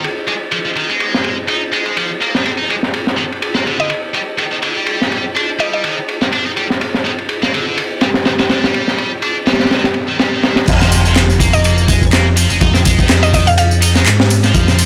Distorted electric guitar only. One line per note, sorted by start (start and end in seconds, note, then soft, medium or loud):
0.27 0.33 G#3 medium
0.52 0.57 F3 medium
0.65 0.69 F3 medium
0.76 0.88 D#3 medium
0.89 1.36 G#3 medium
1.48 1.61 D#4 medium
1.72 1.85 G#3 medium
1.86 1.96 G#3 medium
1.97 2.09 F3 medium
2.21 2.33 A#3 medium
2.34 2.44 D#3 medium
2.45 2.50 C4 medium
2.58 2.68 D#4 medium
2.69 2.74 G#3 medium
3.17 3.23 D#3 medium
3.55 3.65 A#3 medium
3.66 3.78 D3 medium
3.79 3.89 D3 medium
4.14 4.19 G3 medium
4.38 4.44 D#3 medium
4.52 4.56 D#3 medium
4.62 4.75 D3 medium
4.76 5.23 G3 medium
5.35 5.48 D4 medium
5.59 5.71 G3 medium
5.73 5.83 G3 medium
5.84 5.97 D#3 medium
6.21 6.26 G3 medium
6.32 6.45 D4 loud
6.46 6.50 D#4 medium
6.57 6.65 G3 medium
7.05 7.10 D#3 medium
7.43 7.52 A#3 medium
7.53 7.65 D3 medium
7.67 7.77 D3 medium
8.02 8.07 G3 medium
8.26 8.31 D#3 medium
8.39 8.43 D#3 medium
8.50 8.62 D3 loud
8.63 9.10 G3 medium
9.23 9.35 D4 medium
9.47 9.59 G3 medium
9.60 9.70 G3 medium
9.71 9.84 D#3 medium
10.09 10.16 D#3 medium
10.19 10.32 G3 medium
10.33 10.42 D#3 medium
10.43 10.56 D#3 medium
10.81 10.91 F3 loud
10.92 11.01 F3 medium
11.05 11.15 F3 medium
11.16 11.21 D#3 medium
11.40 11.88 A#3 loud
11.88 12.01 G#3 loud
12.12 12.25 A#3 medium
12.37 12.50 F3 medium
12.50 12.57 G#3 medium
12.61 12.74 D#4 medium
12.74 12.79 C4 medium
12.85 12.98 G#3 loud
12.99 13.33 D#3 medium
13.34 13.47 D#3 medium
13.82 13.91 D#4 medium
13.95 14.06 G#3 loud
14.44 14.67 F3 medium
14.68 14.78 F3 loud
14.79 14.86 F3 medium